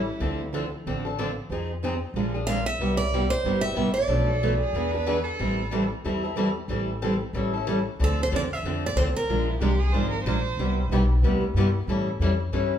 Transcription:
Already playing: E4
0.20 D2 D3 F3 C4 D4 A4
0.54 D3 F3 C4 D4 A4
0.86 A1 D3 F3 C4 D4 A4
1.05 C4 D4 A4
1.19 D3 F3 C4 D4 A4
1.50 F2 F3 C4 D#4 G#4
1.84 F3 C4 D#4 G#4
2.14 A#1 D3 F3 G#3 A#3 D4 F4 G#4 A#4
2.34 A#3 D4 G#4
2.47 D3 F3 G#3 A#3 D4 F4 G#4 A#4 F5
2.66 E5
2.79 C2 C3 G3 B3 E4 G4
2.97 D5
3.14 C3 G3 B3 E4 G4
3.30 C5
3.44 G1 C3 G3 B3 E4 G4
3.61 B3 E4 G4 E5
3.75 A1 C3 G3 B3 E4 G4
3.94 D5
4.08 B1 B2 F3 A3 D4 A4
4.12 B4
4.27 A4
4.43 B2 F3 A3 D4 A4 B4
4.60 G#4
4.73 E2 E3 B3 D4 G#4 B4
4.92 B3 D4 G#4 B4
5.07 E3 B3 D4 G#4 B4
5.24 A4
5.39 A1 E3 G3 C4 E4 A4
5.71 E3 G3 C4 E4 A4
6.04 E2 E3 G3 C4 E4 A4
6.23 C4 E4 A4
6.37 E3 G3 C4 E4 A4
6.68 A1 E3 G3 C4 E4 A4
7.02 E3 G3 C4 E4 A4
7.33 A1 E3 G3 C#4 E4 A4
7.54 C#4 E4 A4
7.67 E3 G3 C#4 E4 A4
7.99 D2 D3 F3 C4 D4 A4
8.04 A4
8.23 C5
8.31 E2 D3 F3 C4 D4 A4
8.36 D5
8.53 E5
8.63 F2 D3 F3 C4 D4 A4
8.86 D5
8.96 D2 D3 F3 C4 D4 A4 C5
9.16 A#4
9.29 A#1 F3 G#3 D4 F4 A#4
9.43 D#4 E4
9.60 C2 F3 G#3 D4 F4 G4 A#4
9.79 G#4
9.92 G#1 F3 G#3 D4 F4 A#4 C5
10.11 A#4
10.25 A#1 F3 G#3 D4 F4 A#4 C5
10.57 C2 C3 G3 B3 E4 G4
10.89 B1 C3 G3 B3 E4 G4
11.22 D2 C3 G3 B3 E4 G4
11.54 G2 C3 G3 B3 E4
11.58 G4
11.87 A2 E3 G3 C#4 E4 A4
12.19 F2 E3 G3 C#4 E4 A4
12.52 G2 E3 G3 C#4 E4 A4

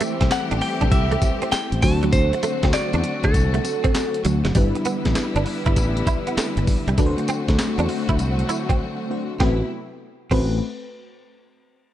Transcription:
Already playing: E3 G3 A3 C4 E4 G4 C5 E5
0.00 A3, closed hi-hat, tambourine
0.21 C2 C4, kick, snare, closed hi-hat
0.31 F#5, snare, clap, closed hi-hat, tambourine
0.51 A1 D4, closed hi-hat
0.61 G5, muted clean electric guitar stroke, open hi-hat
0.81 A1 D4, kick, closed hi-hat
0.92 C2 E5, kick, closed hi-hat, tambourine
1.11 A3, closed hi-hat
1.22 muted clean electric guitar stroke, kick, closed hi-hat, tambourine
1.42 C4, closed hi-hat
1.52 G5, muted clean electric guitar stroke, muted fingered electric bass stroke, snare, clap, closed hi-hat, tambourine
1.72 A1, closed hi-hat
1.82 D2 D3 F#3 A3 C4 D4 F#4 C5 A5, kick, open hi-hat, tambourine
2.03 F#3, closed hi-hat
2.12 C5, kick, closed hi-hat, tambourine
2.33 muted clean electric guitar stroke, closed hi-hat
2.43 A3, closed hi-hat, tambourine
2.63 D2 C4, kick, snare, closed hi-hat
2.73 D5, snare, clap, closed hi-hat, tambourine
2.93 E2 D4, closed hi-hat
3.04 muted clean electric guitar stroke, closed hi-hat
3.23 D2 D4 A4, kick, closed hi-hat
3.34 C2, kick, closed hi-hat, tambourine
3.54 A3, closed hi-hat
3.64 muted clean electric guitar stroke, closed hi-hat, tambourine
3.84 C4, kick, closed hi-hat
3.94 muted clean electric guitar stroke, snare, clap, closed hi-hat, tambourine
4.14 closed hi-hat
4.25 D2 F#3, closed hi-hat, tambourine
4.45 F#1 F#3, snare, closed hi-hat
4.55 G1 D3 E3 G3 B3 D4 E4 B4, kick, closed hi-hat, tambourine
4.75 muted clean electric guitar stroke, closed hi-hat
4.85 B3, closed hi-hat, tambourine
5.05 A1, kick, snare, closed hi-hat
5.15 snare, clap, closed hi-hat, tambourine
5.36 G1 D4, closed hi-hat
5.46 muted clean electric guitar stroke, open hi-hat
5.66 G1 E4, kick, closed hi-hat
5.76 A1, muted clean electric guitar stroke, kick, closed hi-hat, tambourine
5.97 closed hi-hat
6.07 E4, kick, closed hi-hat, tambourine
6.27 B3, closed hi-hat
6.37 A3, muted fingered electric bass stroke, snare, clap, closed hi-hat, tambourine
6.57 G1, muted clean electric guitar stroke, closed hi-hat
6.67 kick, open hi-hat, tambourine
6.87 C2 G3, closed hi-hat
6.97 D2 F#3 A3 C4 D4 F#4 B4, kick, closed hi-hat, tambourine
7.06 C5
7.18 muted clean electric guitar stroke, closed hi-hat
7.28 C4, closed hi-hat, tambourine
7.48 D2, kick, snare, closed hi-hat
7.59 snare, clap, closed hi-hat, tambourine
7.78 E2 D4, closed hi-hat
7.89 muted clean electric guitar stroke, open hi-hat
8.09 D2 E4, kick, closed hi-hat
8.19 C2, muted clean electric guitar stroke, closed hi-hat, tambourine
8.39 closed hi-hat
8.49 E4, closed hi-hat, tambourine
8.69 C4, kick, closed hi-hat
9.10 A3 D4 F#4 C5
9.40 A1 C3 F#3 A3 B3 C4 E4 F#4 B4, kick, snare
10.31 A1 A3 C4 F#4 B4, kick, crash

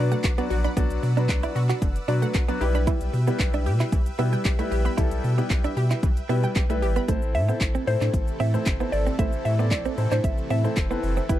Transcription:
Already playing: B2 F#3 B3 D4 F#4 B4 D5 F#5 D6
0.12 A3 F#5, closed hi-hat, shaker
0.24 B1 F#4, kick, clap, closed hi-hat, shaker
0.38 F#3 B3 D4 F#4 B4 D5, closed hi-hat, shaker
0.50 A#1 F#4, muted clean electric guitar stroke, open hi-hat, shaker
0.64 D4 B5, closed hi-hat, shaker
0.76 B1 D3 F#3 B3 D4 F#4 D5 E6, kick, closed hi-hat, shaker
0.90 B1, closed hi-hat, shaker
1.03 B2, muted clean electric guitar stroke, open hi-hat, shaker
1.17 F#3 B3 D4 F#4 B4, closed hi-hat, shaker
1.29 B1, kick, clap, closed hi-hat, shaker
1.43 E4 D5, closed hi-hat, shaker
1.56 B2 F#4, muted clean electric guitar stroke, open hi-hat, shaker
1.69 F#4, clap, closed hi-hat, shaker
1.82 F#1 D3, muted clean electric guitar stroke, kick, closed hi-hat, shaker
1.96 closed hi-hat, shaker
2.08 B2 F#3 B3 D4 F#4 B4 D5, open hi-hat, shaker
2.22 A3 F#5, closed hi-hat, shaker
2.34 B1 F#4, kick, clap, closed hi-hat, shaker
2.48 F#3 B3 D4 F#4 B4 D5, closed hi-hat, shaker
2.61 B1 G3 B3 E4 G4 B4 E5 G5 E6, muted clean electric guitar stroke, open hi-hat, shaker
2.75 D4 B5, closed hi-hat, shaker
2.87 E3 E4, kick, closed hi-hat, shaker
3.01 B1, closed hi-hat, shaker
3.14 B2, muted clean electric guitar stroke, open hi-hat, shaker
3.27 G3 B3 E4 G4 B4, closed hi-hat, shaker
3.40 B1, kick, clap, closed hi-hat, shaker
3.54 D4 E5, closed hi-hat, shaker
3.66 B2 G4, muted clean electric guitar stroke, open hi-hat, shaker
3.80 E4, clap, closed hi-hat, shaker
3.92 B1 E3, muted clean electric guitar stroke, kick, closed hi-hat, shaker
4.06 closed hi-hat, shaker
4.18 B2 G3 B3 E4 G4 B4 E5, open hi-hat, shaker
4.33 G3 G5, closed hi-hat, shaker
4.45 B1 G4, kick, clap, closed hi-hat, shaker
4.59 G3 A3 B3 E4 G4 B4 E5, closed hi-hat, shaker
4.71 A#1 G4, muted clean electric guitar stroke, open hi-hat, shaker
4.85 B3 B5, closed hi-hat, shaker
4.97 B1 E3 G3 B3 E4 G4 A4, kick, closed hi-hat, shaker
5.11 B1, closed hi-hat, shaker
5.24 B2, muted clean electric guitar stroke, open hi-hat, shaker
5.38 G3 B3 E4 G4 B4, closed hi-hat, shaker
5.50 B1, kick, clap, closed hi-hat, shaker
5.64 D4 E5, closed hi-hat, shaker
5.77 B2 G4, muted clean electric guitar stroke, open hi-hat, shaker
5.91 E4, clap, closed hi-hat, shaker
6.03 B1 E3, muted clean electric guitar stroke, kick, closed hi-hat, shaker
6.17 closed hi-hat, shaker
6.29 B2 G3 B3 E4 G4 B4 E5, open hi-hat, shaker
6.43 G3 G5, closed hi-hat, shaker
6.55 B1 G4, kick, clap, closed hi-hat, shaker
6.69 G3 A3 B3 E4 G4 B4 E5, closed hi-hat, shaker
6.82 G#1 G4, muted clean electric guitar stroke, open hi-hat, shaker
6.96 B3 B5, closed hi-hat, shaker
7.08 A1 C3 E3 A3 C4 E4 A4 C5, kick, closed hi-hat, shaker
7.22 shaker
7.35 A2 E5, muted clean electric guitar stroke, open hi-hat, shaker
7.48 B3 C4 E4 A4 C5, shaker
7.61 A1, kick, clap, closed hi-hat, shaker
7.75 C4, shaker
7.87 A2 C4 E4 A4 C5, muted clean electric guitar stroke, open hi-hat, shaker
8.01 A2 D4, clap, shaker
8.14 A1, muted clean electric guitar stroke, kick, closed hi-hat, shaker
8.28 shaker
8.40 A2 C4 E5, open hi-hat, shaker
8.54 A3 C4 E4 A4 C5, shaker
8.66 G1, kick, clap, closed hi-hat, shaker
8.80 B3 C4 E4 A4 C5, shaker
8.92 G#1 D5, muted clean electric guitar stroke, open hi-hat, shaker
9.06 C4, shaker
9.19 A1 A3 C4 E4 A4 C5 E5, kick, closed hi-hat, shaker
9.33 shaker
9.45 A2 E5, muted clean electric guitar stroke, open hi-hat, shaker
9.59 B3 C4 E4 A4 D5, shaker
9.71 A1 D5, kick, clap, closed hi-hat, shaker
9.85 C4, shaker
9.98 A2 C4 E4 A4 C5, muted clean electric guitar stroke, open hi-hat, shaker
10.11 A2 D4 C5, clap, shaker
10.24 A1 E5, muted clean electric guitar stroke, kick, closed hi-hat, shaker
10.38 shaker
10.50 A2 C4 E5, open hi-hat, shaker
10.64 A3 C4 E4 A4 C5, shaker
10.77 F1, kick, clap, closed hi-hat, shaker
10.90 B3 C4 E4 A4 B4, shaker
11.03 F#1, muted clean electric guitar stroke, open hi-hat, shaker
11.17 C4, shaker
11.29 G1 B2 G3 B3 E4 G4 B4, kick, closed hi-hat, shaker

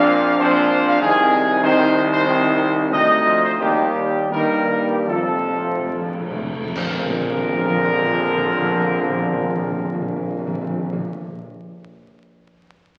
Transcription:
Already playing: A#1 A#2 F3 C4 D4 F5
0.39 A#2 F3 C4 D4 C5
0.88 F5
1.01 C2 D#3 C4 D#4 G#4
1.62 D#3 C4 D#4 C5
2.12 C5
2.26 D#3 C4 D#4 C5
2.91 D2 C3 C4 D#4 D#5
3.26 F3
3.43 C5
3.60 D#2 D#3 G3 A#3 D#4 G4
4.31 G2 D#3 G3 A#3 D#4 A#4
4.69 D#3
4.90 G4
5.06 F2 C3 F3 F4 A4
5.18 F2
5.28 F2
5.38 F2
5.48 F2
5.58 F2
5.68 F2
5.78 F2
5.88 F2
5.92 F3
5.98 F2
6.09 F2
6.19 F2
6.31 F2 A3
6.41 F2
6.52 F2
6.64 F2
6.75 A#1 A#2 D3 F3 C4 A#4, concert bass drum, crash
6.83 A#2
6.91 A#2
6.99 A#2
7.06 A#2
7.14 A#2
7.22 A#2
7.29 A#2
7.37 A#2
7.45 A#2
7.53 A#2
7.61 A#2
7.69 A#2
7.76 A#2
7.85 A#2
7.92 A#2
8.00 A#2
8.08 A#2
8.15 A#2
8.24 A#2
8.30 A#2
8.38 A#2
8.46 A#2
8.54 A#2
8.61 A#2
8.70 A#2
8.77 A#2
8.85 A#2
8.92 A#2
9.01 A#2
9.09 A#2
9.18 A#2
9.25 A#2
9.33 A#2
9.41 A#2
9.49 A#2
9.56 A#2
9.64 A#2
9.71 A#2
9.79 A#2
9.86 A#2
9.94 A#2
10.02 A#2
10.09 A#2
10.16 A#2
10.24 A#2
10.32 A#2
10.39 A#2
10.47 A#2
10.54 A#2
10.61 A#2
10.69 A#2
10.77 A#2
10.85 A#2
10.93 A#2
11.00 A#2

